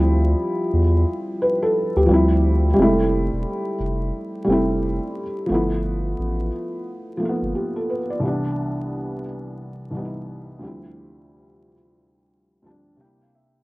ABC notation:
X:1
M:4/4
L:1/16
Q:"Swing 16ths" 1/4=88
K:Ddor
V:1 name="Felt piano"
z8 B A2 G2 z3 | z16 | z12 G A B d- | d z12 z3 |
z8 z2 a2 g f e2 |]
V:2 name="Felt piano"
[F,G,CE]4 z8 [F,G,CE]4 | [G,^G,A,CE]6 z4 [=G,A,CE]4 z2 | [F,A,B,E]6 z4 [F,A,_B,=B,F]4 z2 | [C,,E,G,B,D]6 z4 [C,,E,G,B,_E=E]4 [D,,F,G,CE]2- |
[D,,F,G,CE]4 z6 [D,,F,G,CD]2 [C,G,_B,DE]4 |]
V:3 name="Sub bass" clef=bass
D,,2 z2 E,,2 z4 z D,, D,,4 | F,,,3 E,,, z2 F,,,2 z2 F,,,3 z3 | G,,,4 A,,,2 z4 z G,,, z4 | z16 |
z16 |]